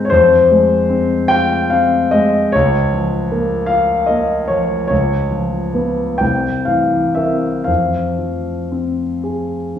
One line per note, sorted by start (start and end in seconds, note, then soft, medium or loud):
0.00 0.12 G#3 soft
0.00 0.12 C4 soft
0.00 0.13 F4 medium
0.00 0.12 A#4 medium
0.00 0.10 C5 medium
0.00 0.12 D#5 medium
0.05 0.11 C#5 medium
0.10 2.51 F2 medium
0.10 1.30 C5 medium
0.51 1.14 G#3 soft
0.90 1.55 C4 soft
1.28 1.97 F4 medium
1.28 1.71 G5 medium
1.70 2.38 C4 soft
1.70 2.13 F5 medium
2.11 2.54 G#3 soft
2.11 2.53 D#5 medium
2.52 4.88 C#2 medium
2.52 3.69 C#5 medium
2.93 3.54 F3 soft
3.32 3.94 A#3 soft
3.66 4.33 F4 soft
3.66 4.08 F5 medium
4.06 4.75 A#3 soft
4.06 4.49 D#5 medium
4.48 4.91 F3 soft
4.48 4.86 C#5 medium
4.88 6.16 C#2 soft
4.88 6.19 C#5 medium
5.31 6.01 F3 soft
5.74 6.16 B3 soft
5.74 6.16 B4 soft
6.18 7.64 C2 medium
6.18 6.67 G5 medium
6.65 7.47 E3 soft
6.65 7.16 F5 medium
7.15 7.64 C4 soft
7.15 7.64 A#4 soft
7.15 7.67 E5 medium
7.64 9.79 F2 soft
7.64 9.22 F5 medium
8.19 9.03 F3 soft
8.72 9.54 C4 soft
9.24 9.79 G#4 soft
9.76 9.79 C4 soft